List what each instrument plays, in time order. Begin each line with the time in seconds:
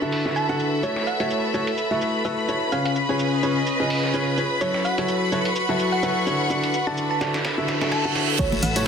Already playing: string section D4 A4 E5, violin section B4 B5
0.02 upright piano D3 E4 F#4 A4 E5
0.12 open hi-hat
0.26 upright piano D3 E4 F#4 A4 E5, snare
0.36 synth pluck A5, shaker
0.49 upright piano D3 E4 F#4 A4 F#5
0.60 shaker
0.83 upright piano A3 E4 F#4 A4 C#5, violin section B4 B5, synth pluck C#5, shaker
0.96 snare
1.07 synth pluck F#5, shaker
1.20 upright piano A3 E4 F#4 A4 C#5, closed hi-hat
1.30 shaker
1.54 upright piano A3 E4 F#4 A4 C#5, shaker
1.67 string section B5, closed hi-hat
1.78 shaker
1.91 upright piano A3 E4 F#4 A4 E5
2.01 shaker
2.25 upright piano A3 E4 F#4 A4 B4, synth pluck E5, shaker
2.49 upright piano E4 F#4 A4 C#5, shaker
2.72 upright piano C#3 F4 G#4 B4 C#5, string section C#4, synth pluck F5, shaker
2.85 string section G#4, synth pluck F5, closed hi-hat
2.96 string section D#5, shaker
3.09 upright piano C#3 F4 G#4 B4 C#5
3.19 shaker
3.43 upright piano C#3 F4 G#4 B4 C#5, shaker
3.67 shaker
3.80 upright piano C#3 F4 G#4 B4 D#5
3.90 open hi-hat
4.04 snare
4.14 upright piano C#3 F4 G#4 B4 C#5, shaker
4.38 upright piano F4 G#4 B4 C#5, shaker
4.61 upright piano F#3 E4 F#4 A4 C#5, string section F#4, synth pluck C#5, shaker
4.74 snare
4.85 synth pluck F#5, shaker
4.98 upright piano F#3 E4 F#4 A4 C#5, closed hi-hat
5.08 shaker
5.13 string section C#6
5.32 upright piano F#3 E4 F#4 A4 C#5, shaker
5.45 string section F#5, closed hi-hat
5.56 shaker
5.69 upright piano F#3 E4 F#4 A4 E5
5.79 shaker
5.92 synth pluck F#5
6.03 upright piano F#3 E4 F#4 A4 B4, shaker
6.27 upright piano D3 E4 F#4 A4 C#5, shaker
6.50 upright piano D3 E4 F#4 A4 D5, string section D4, shaker
6.64 closed hi-hat
6.74 shaker
6.87 upright piano D3 E4 F#4 A4 D5, synth pluck A5
6.97 shaker
7.02 string section A4
7.11 synth pluck A5
7.21 upright piano D3 E4 F#4 A4 D5, snare, shaker
7.34 string section E5, snare, shaker
7.45 snare, reverse cymbal, shaker
7.58 upright piano D3 E4 F#4 A4 E5
7.68 snare, shaker
7.81 upright piano D3 E4 F#4 A4 E5, snare, shaker
7.92 synth pluck A5, snare, shaker
8.05 upright piano D3 E4 F#4 A4 F#5
8.15 snare, shaker
8.39 upright piano A3 E4 F#4 A4 C#5, violin section B4 B5, synth pluck C#5, kick, closed hi-hat, crash, tambourine, impact, shaker
8.52 snare, tambourine, high conga
8.63 fm bass A1, synth pluck F#5, open hi-hat, shaker
8.76 upright piano A3 E4 F#4 A4 C#5, closed hi-hat, tambourine